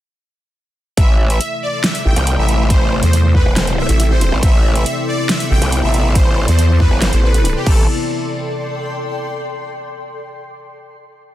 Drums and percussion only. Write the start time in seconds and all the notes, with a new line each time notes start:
0.97 kick, closed hi-hat
1.30 closed hi-hat
1.41 closed hi-hat
1.84 snare, closed hi-hat
1.95 closed hi-hat
2.16 closed hi-hat
2.27 closed hi-hat
2.49 closed hi-hat
2.70 kick, closed hi-hat
3.03 closed hi-hat
3.13 closed hi-hat
3.35 kick
3.56 snare, closed hi-hat
3.67 closed hi-hat
3.89 closed hi-hat
4.00 closed hi-hat
4.21 closed hi-hat
4.43 kick, closed hi-hat
4.75 closed hi-hat
4.86 closed hi-hat
5.29 snare, closed hi-hat
5.40 closed hi-hat
5.62 closed hi-hat
5.72 closed hi-hat
5.94 closed hi-hat
6.15 kick, closed hi-hat
6.48 closed hi-hat
6.59 closed hi-hat
6.80 kick
7.02 snare, closed hi-hat
7.13 closed hi-hat
7.34 closed hi-hat
7.45 closed hi-hat
7.66 kick, crash